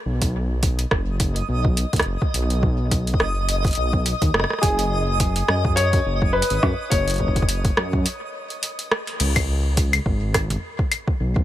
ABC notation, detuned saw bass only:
X:1
M:4/4
L:1/16
Q:"Swing 16ths" 1/4=105
K:Blyd
V:1 name="Detuned saw bass" clef=bass
B,,,6 F,,,4 B,,,3 D,, F,,, z | B,,,6 F,,,4 B,,,3 D,, F,,, z | F,,,6 F,,4 F,,,3 G,,, F,, z | F,,,6 F,,2 z8 |
C,,6 G,,,4 z4 B,,, z |]